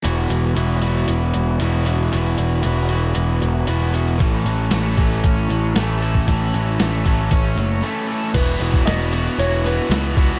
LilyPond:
<<
  \new Staff \with { instrumentName = "Upright piano" } { \time 4/4 \key a \lydian \tempo 4 = 115 r1 | r1 | r1 | r1 |
b'4 dis''4 cis''8 b'4 r8 | }
  \new Staff \with { instrumentName = "Overdriven electric guitar" } { \time 4/4 \key a \lydian <e, b, e b e' fis'>4 <e b e' fis'>8 <e b e' fis'>4. <e, b, e b e' fis'>8 <e b e' fis'>8 | <e, b, e b e' fis'>4 <e b e' fis'>8 <e b e' fis'>4. <e, b, e b e' fis'>8 <e b e' fis'>8 | <a, e a cis' a'>4 <e a cis' a'>8 <a cis' a'>4. <a, e a cis' a'>8 <a cis' a'>8 | <a, e a cis' a'>4 <e a cis' a'>8 <a cis' a'>4. <a, e a cis' a'>8 <a cis' a'>8 |
<e, b, e b e' fis'>8 <e, b, e b e' fis'>8 <e, b, e b e' fis'>8 <e, b, e b e' fis'>8 <e, b, e b e' fis'>8 <e, b, e b e' fis'>8 <e, b, e b e' fis'>8 <e, b, e b e' fis'>8 | }
  \new Staff \with { instrumentName = "Distorted electric guitar" } { \clef bass \time 4/4 \key a \lydian r1 | r1 | a,8 fis8 a8 fis8 cis'8 fis8 a8 e'8 | a,8 fis8 a8 fis8 cis'8 fis8 a8 e'8 |
<e, b, e b e' fis'>8 <e, b, e b e' fis'>8 <e, b, e b e' fis'>8 <e, b, e b e' fis'>8 <e, b, e b e' fis'>8 <e, b, e b e' fis'>8 <e, b, e b e' fis'>8 <e, b, e b e' fis'>8 | }
  \new Staff \with { instrumentName = "Picked electric bass" } { \clef bass \time 4/4 \key a \lydian e,,8 e,,8 e,,4 e,,8 e,,8 e,,4 | e,,8 e,,8 e,,4 e,,8 e,,8 e,,4 | a,,8 a,,8 a,,4 a,,8 a,,8 a,,4 | a,,8 a,,8 a,,4 a,,8 fis,,8 r4 |
e,,8 e,,8 e,,4 e,,4 cis,4 | }
  \new DrumStaff \with { instrumentName = "Drums" } \drummode { \time 4/4 hh8 hh8 hh8 hh8 hh8 hh8 hh8 hh8 | hh8 hh8 hh8 hh8 hh8 hh8 hh8 hh8 | <hh bd>8 hh8 <hh sn>8 <hh bd>8 <hh bd>8 hh8 <hh sn>8 hh16 bd16 | <hh bd>8 hh8 <hh sn>8 <hh bd>8 <hh bd>8 hh8 r4 |
<cymc hh bd>8 hh16 bd16 <hh sn>8 hh8 hh8 hh8 <hh sn>8 <hh bd>8 | }
>>